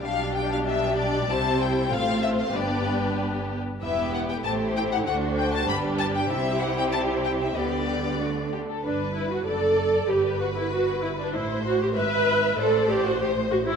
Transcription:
<<
  \new Staff \with { instrumentName = "Violin section" } { \time 2/4 \key g \mixolydian \tempo 4 = 96 f''8 g''16 f''16 e''8 d''8 | a''8 g''8 f''8 e''16 f''16 | d''4 r4 | \key g \major e''8 fis''16 g''16 a''8 g''16 fis''16 |
fis''8 g''16 a''16 b''8 a''16 g''16 | e''8 fis''16 g''16 a''8 g''16 e''16 | d''4. r8 | b'4 d''4 |
b'2 | c''4 e''4 | d''4 c''4 | }
  \new Staff \with { instrumentName = "Violin section" } { \time 2/4 \key g \mixolydian <d' g'>2 | <e' c''>4 <f' c''>4 | <g' b'>4. r8 | \key g \major <g' b'>4 <g' c''>4 |
<fis' c''>4 <g' b'>4 | <g' c''>2 | <g' b'>4 fis'8 g'16 a'16 | b'4 d''4 |
b'2 | c''4 e''4 | c''2 | }
  \new Staff \with { instrumentName = "Viola section" } { \time 2/4 \key g \mixolydian <g d'>2 | <g c'>4 <a c'>4 | <b d'>4. r8 | \key g \major <b e'>4 <a e'>4 |
<a d'>4 <g d'>4 | <g e'>2 | <g b>4 <a d'>8 r8 | d'8 e'16 fis'16 a'4 |
g'8 fis'16 e'16 fis'8 e'16 d'16 | e'8 fis'16 g'16 b'4 | a'8 g'16 fis'16 g'8 fis'16 e'16 | }
  \new Staff \with { instrumentName = "Cello section" } { \clef bass \time 2/4 \key g \mixolydian b,2 | c4 a,4 | g,4. r8 | \key g \major e,4 a,4 |
d,4 g,4 | c2 | d4. r8 | g,4 fis,4 |
g,2 | a,4 gis,4 | a,2 | }
  \new Staff \with { instrumentName = "Double bass section" } { \clef bass \time 2/4 \key g \mixolydian b,,2 | c,4 a,,4 | g,,4. r8 | \key g \major e,,4 a,,4 |
d,4 g,,4 | c,2 | d,4. r8 | g,,4 fis,,4 |
g,,2 | a,,4 gis,,4 | a,,2 | }
>>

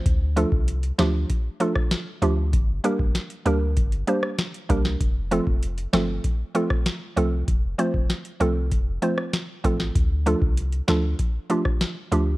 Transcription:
<<
  \new Staff \with { instrumentName = "Synth pluck" } { \time 4/4 \key f \major \tempo 4 = 97 r8 <f a d' f' a'>8 r8 <f a d' f' g'>8 r8 <f a d' f' a'>8 r8 <f a d' f' g'>8 | r8 <g bes d' g' bes'>8 r8 <g bes d' g' bes'>8 r8 <g bes d' g' c''>8 r8 <g bes d' g' bes'>8 | r8 <f a c' f' a'>8 r8 <f a c' f' a'>8 r8 <f a c' f' a'>8 r8 <f a c' f' a'>8 | r8 <f a c' f' c''>8 r8 <f a c' f' a'>8 r8 <f a c' f' c''>8 r8 <f a c' f' a'>8 |
r8 <f a d' f' a'>8 r8 <f a d' f' a'>8 r8 <f a d' f' g'>8 r8 <f a d' f' g'>8 | }
  \new Staff \with { instrumentName = "Sub bass" } { \clef bass \time 4/4 \key f \major d,8. c,8. d,8 r4. d,8 | g,,8 r16 g,,16 r8 d,8 g,,8 r4 c,8 | f,,8. f,,8. g,,8 r4. c,8 | f,,8 r16 f,,16 r8 c,8 f,,8 r4 a,,8 |
d,8. c,8. d,8 r4. d,8 | }
  \new DrumStaff \with { instrumentName = "Drums" } \drummode { \time 4/4 <hh bd>8 hh16 bd16 hh16 hh16 <hh sn>8 <hh bd>8 hh16 <bd ss>16 <hh sn>8 hh8 | <hh bd>8 hh16 bd16 <hh sn>16 hh16 hh8 <hh bd>16 hh16 hh16 ss16 <hh sn>16 hh16 <hh bd>16 sn16 | <hh bd>8 hh16 bd16 hh16 hh16 <hh sn>8 <hh bd>8 hh16 <bd ss>16 <hh sn>8 hh8 | <hh bd>8 hh16 bd16 <hh sn>16 hh16 hh8 <hh bd>8 hh16 ss16 <hh sn>8 <hh bd>16 sn16 |
<hh bd>8 hh16 bd16 hh16 hh16 <hh sn>8 <hh bd>8 hh16 <bd ss>16 <hh sn>8 hh8 | }
>>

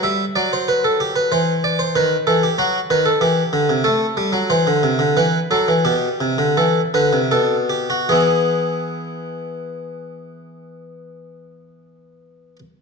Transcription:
<<
  \new Staff \with { instrumentName = "Harpsichord" } { \time 3/4 \key b \phrygian \tempo 4 = 87 e''8 d''16 c''16 b'16 a'16 g'16 b'16 c''8 d''16 c''16 | b'8 a'16 g'16 fis'8 b'16 a'16 g'4 | a'4 c''4 b'8 a'8 | g'4 a'8 b'8 a'8 g'16 fis'16 |
<b e' gis'>2.~ | <b e' gis'>2. | }
  \new Staff \with { instrumentName = "Harpsichord" } { \clef bass \time 3/4 \key b \phrygian g8 fis4. e4 | dis8 e8 fis8 dis8 e8 d16 c16 | a8 g16 fis16 e16 d16 c16 d16 e8 fis16 e16 | b,8 c16 d16 e8 d16 c16 b,4 |
e2.~ | e2. | }
>>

